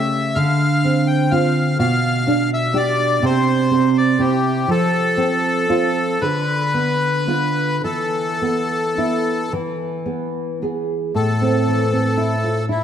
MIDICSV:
0, 0, Header, 1, 3, 480
1, 0, Start_track
1, 0, Key_signature, 0, "minor"
1, 0, Tempo, 955414
1, 908, Time_signature, 6, 3, 24, 8
1, 1875, Tempo, 988468
1, 2835, Tempo, 1039861
1, 3315, Tempo, 1121495
1, 4275, Tempo, 1079137
1, 5235, Tempo, 1027397
1, 6023, End_track
2, 0, Start_track
2, 0, Title_t, "Bandoneon"
2, 0, Program_c, 0, 23
2, 0, Note_on_c, 0, 76, 96
2, 176, Note_on_c, 0, 77, 105
2, 190, Note_off_c, 0, 76, 0
2, 538, Note_on_c, 0, 79, 91
2, 540, Note_off_c, 0, 77, 0
2, 658, Note_on_c, 0, 77, 95
2, 662, Note_off_c, 0, 79, 0
2, 893, Note_off_c, 0, 77, 0
2, 901, Note_on_c, 0, 77, 110
2, 1258, Note_off_c, 0, 77, 0
2, 1275, Note_on_c, 0, 76, 100
2, 1389, Note_on_c, 0, 74, 110
2, 1393, Note_off_c, 0, 76, 0
2, 1632, Note_off_c, 0, 74, 0
2, 1636, Note_on_c, 0, 72, 103
2, 1992, Note_off_c, 0, 72, 0
2, 1993, Note_on_c, 0, 74, 94
2, 2106, Note_on_c, 0, 67, 87
2, 2108, Note_off_c, 0, 74, 0
2, 2344, Note_off_c, 0, 67, 0
2, 2349, Note_on_c, 0, 69, 113
2, 3068, Note_on_c, 0, 71, 106
2, 3073, Note_off_c, 0, 69, 0
2, 3774, Note_off_c, 0, 71, 0
2, 3782, Note_on_c, 0, 69, 96
2, 4513, Note_off_c, 0, 69, 0
2, 5238, Note_on_c, 0, 69, 91
2, 5940, Note_off_c, 0, 69, 0
2, 5964, Note_on_c, 0, 64, 71
2, 6023, Note_off_c, 0, 64, 0
2, 6023, End_track
3, 0, Start_track
3, 0, Title_t, "Nylon-string guitar"
3, 0, Program_c, 1, 24
3, 0, Note_on_c, 1, 49, 75
3, 0, Note_on_c, 1, 57, 56
3, 0, Note_on_c, 1, 67, 58
3, 170, Note_off_c, 1, 49, 0
3, 170, Note_off_c, 1, 57, 0
3, 172, Note_off_c, 1, 67, 0
3, 180, Note_on_c, 1, 50, 78
3, 423, Note_on_c, 1, 60, 58
3, 657, Note_off_c, 1, 60, 0
3, 662, Note_on_c, 1, 60, 52
3, 663, Note_on_c, 1, 65, 61
3, 882, Note_off_c, 1, 50, 0
3, 885, Note_off_c, 1, 65, 0
3, 886, Note_off_c, 1, 60, 0
3, 899, Note_on_c, 1, 47, 80
3, 1140, Note_on_c, 1, 62, 67
3, 1368, Note_off_c, 1, 62, 0
3, 1374, Note_on_c, 1, 62, 61
3, 1376, Note_on_c, 1, 67, 66
3, 1605, Note_off_c, 1, 62, 0
3, 1605, Note_off_c, 1, 67, 0
3, 1608, Note_off_c, 1, 47, 0
3, 1620, Note_on_c, 1, 48, 84
3, 1864, Note_on_c, 1, 60, 62
3, 2090, Note_off_c, 1, 60, 0
3, 2096, Note_on_c, 1, 60, 59
3, 2103, Note_on_c, 1, 64, 59
3, 2319, Note_off_c, 1, 48, 0
3, 2320, Note_off_c, 1, 60, 0
3, 2323, Note_off_c, 1, 64, 0
3, 2335, Note_on_c, 1, 53, 82
3, 2574, Note_on_c, 1, 60, 65
3, 2821, Note_off_c, 1, 60, 0
3, 2827, Note_on_c, 1, 60, 55
3, 2829, Note_on_c, 1, 65, 68
3, 3048, Note_off_c, 1, 53, 0
3, 3049, Note_off_c, 1, 60, 0
3, 3050, Note_off_c, 1, 65, 0
3, 3069, Note_on_c, 1, 50, 76
3, 3311, Note_on_c, 1, 59, 58
3, 3535, Note_off_c, 1, 59, 0
3, 3540, Note_on_c, 1, 59, 54
3, 3542, Note_on_c, 1, 65, 58
3, 3769, Note_off_c, 1, 59, 0
3, 3770, Note_off_c, 1, 65, 0
3, 3771, Note_off_c, 1, 50, 0
3, 3783, Note_on_c, 1, 52, 68
3, 4029, Note_on_c, 1, 59, 55
3, 4262, Note_off_c, 1, 59, 0
3, 4267, Note_on_c, 1, 59, 56
3, 4269, Note_on_c, 1, 64, 57
3, 4494, Note_off_c, 1, 59, 0
3, 4495, Note_off_c, 1, 52, 0
3, 4495, Note_off_c, 1, 64, 0
3, 4513, Note_on_c, 1, 52, 72
3, 4748, Note_on_c, 1, 59, 46
3, 4994, Note_off_c, 1, 59, 0
3, 4999, Note_on_c, 1, 59, 45
3, 5002, Note_on_c, 1, 68, 50
3, 5217, Note_off_c, 1, 52, 0
3, 5218, Note_off_c, 1, 59, 0
3, 5219, Note_off_c, 1, 68, 0
3, 5232, Note_on_c, 1, 45, 57
3, 5358, Note_on_c, 1, 60, 48
3, 5479, Note_on_c, 1, 52, 47
3, 5552, Note_off_c, 1, 60, 0
3, 5598, Note_on_c, 1, 60, 44
3, 5673, Note_off_c, 1, 52, 0
3, 5713, Note_on_c, 1, 64, 47
3, 5791, Note_off_c, 1, 60, 0
3, 5836, Note_on_c, 1, 65, 38
3, 5907, Note_off_c, 1, 64, 0
3, 5953, Note_on_c, 1, 64, 49
3, 5956, Note_off_c, 1, 65, 0
3, 6023, Note_off_c, 1, 45, 0
3, 6023, Note_off_c, 1, 64, 0
3, 6023, End_track
0, 0, End_of_file